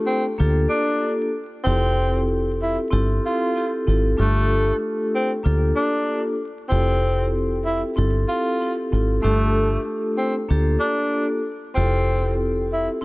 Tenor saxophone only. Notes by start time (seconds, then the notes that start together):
0.07 C4
0.69 D4
1.64 C4
2.62 E4
3.26 F4
4.20 A3
5.15 C4
5.76 D4
6.69 C4
7.65 E4
8.28 F4
9.22 A3
10.18 C4
10.80 D4
11.75 C4
12.73 E4